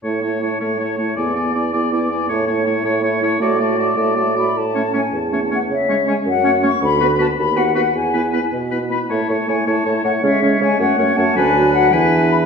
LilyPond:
<<
  \new Staff \with { instrumentName = "Flute" } { \time 6/8 \key a \major \tempo 4. = 106 a''8 a''8 a''8 a''8 a''8 a''8 | gis''8 gis''8 gis''8 gis''8 gis''8 gis''8 | a''8 a''8 a''8 a''8 a''8 a''8 | a''8 a''8 a''8 a''8 a''8 b''8 |
a''4 gis''8 a''8. a''16 fis''8 | e''4 gis''8 fis''4 cis'''8 | b''4 a''8 b''8 fis''8 fis''8 | gis''4. r4 b''8 |
a''4 gis''8 a''8. a''16 fis''8 | e''4 gis''8 fis''4 a''8 | gis''4 fis''8 gis''4 b''8 | }
  \new Staff \with { instrumentName = "Oboe" } { \time 6/8 \key a \major cis''8 cis''8 cis''8 cis''8 cis''8 cis''8 | d''8 d''8 d''8 d''8 d''8 d''8 | cis''8 cis''8 cis''8 cis''8 cis''8 cis''8 | d''8 d''8 d''8 d''8 d''8 d''8 |
r8 cis''8 cis''8 r8 cis''8 cis''8 | r8 cis''8 cis''8 r8 cis''8 cis''8 | r8 b'8 b'8 r8 b'8 b'8 | r8 b'8 b'8 r8 b'8 b'8 |
cis''8 cis''8 cis''8 cis''8 cis''8 cis''8 | cis''8 cis''8 cis''8 cis''8 cis''8 cis''8 | b'4. b'4. | }
  \new Staff \with { instrumentName = "Clarinet" } { \time 6/8 \key a \major e'8 e'8 e'8 e'8 e'8 e'8 | e'8 e'8 e'8 e'8 e'8 e'8 | e'8 e'8 e'8 e'8 e'8 e'8 | fis'8 fis'8 fis'8 fis'8 fis'8 fis'8 |
r8 cis'8 cis'8 r8 cis'8 cis'8 | r8 cis'8 cis'8 r8 cis'8 cis'8 | r8 fis'8 fis'8 r8 fis'8 fis'8 | r8 e'8 e'8 r8 e'8 e'8 |
e'8 e'8 e'8 e'8 e'8 e'8 | cis'8 cis'8 cis'8 cis'8 cis'8 cis'8 | d'4. d'4. | }
  \new Staff \with { instrumentName = "French horn" } { \time 6/8 \key a \major a8 a8 a8 a8 a8 a8 | b8 b8 b8 b8 b8 b8 | a8 a8 a8 a8 a8 a8 | a8 a8 a8 a8 a8 a8 |
r8 a8 a8 r8 a8 a8 | r8 gis8 gis8 r8 a8 a8 | r8 b8 b8 r8 b8 b8 | r8 b8 b8 r8 b8 b8 |
a8 a8 a8 a8 a8 a8 | gis8 gis8 gis8 a8 a8 a8 | fis4. e4. | }
  \new Staff \with { instrumentName = "Bassoon" } { \clef bass \time 6/8 \key a \major a,4. a,4. | e,4. e,4. | a,4. a,4. | a,4. a,4. |
a,4. e,4. | cis4. fis,4. | d,4. dis,4. | e,4. b,4. |
a,8 a,8 a,8 a,8 a,8 a,8 | cis8 cis8 cis8 fis,8 fis,8 fis,8 | d,4. e,4. | }
>>